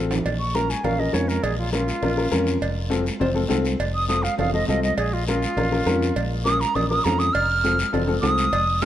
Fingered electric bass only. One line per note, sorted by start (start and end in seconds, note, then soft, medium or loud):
0.00 0.19 A1 medium
0.25 0.73 A#1 medium
0.84 1.08 A#1 medium
1.14 1.37 F2 medium
1.43 1.91 A#1 medium
2.02 2.26 A#1 medium
2.32 2.56 F2 loud
2.62 3.09 F1 loud
3.21 3.44 F1 loud
3.50 3.74 C2 loud
3.80 4.27 F1 loud
4.39 4.63 F1 medium
4.68 4.92 C2 loud
4.98 5.45 A#1 loud
5.57 5.81 A#1 medium
5.86 6.10 F2 loud
6.16 6.64 A#1 loud
6.75 6.99 A#1 medium
7.05 7.29 F2 loud
7.35 7.82 F1 loud
7.93 8.17 F1 medium
8.23 8.47 C2 loud
8.53 8.85 F1 loud